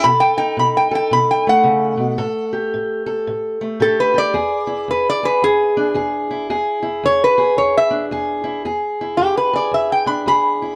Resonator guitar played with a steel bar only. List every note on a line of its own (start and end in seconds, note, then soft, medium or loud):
0.04 0.21 B5 medium
0.20 0.37 G5 medium
0.38 0.56 G5 loud
0.59 0.76 B5 medium
0.77 0.94 G5 medium
0.95 1.12 G5 medium
1.13 1.30 B5 medium
1.31 1.48 G5 medium
1.49 2.53 F#5 medium
3.82 3.99 A4 medium
4.00 4.17 B4 medium
4.18 4.87 D5 loud
4.91 5.07 B4 medium
5.10 5.26 D5 medium
5.25 5.42 B4 medium
5.44 5.95 G#4 loud
7.06 7.22 C#5 loud
7.24 7.58 B4 medium
7.58 7.75 C#5 medium
7.77 8.05 E5 loud
9.17 9.36 G4 medium
9.37 9.55 B4 medium
9.56 9.73 D5 medium
9.74 9.91 E5 medium
9.92 10.07 G5 medium
10.07 10.26 B5 medium
10.28 10.75 B5 medium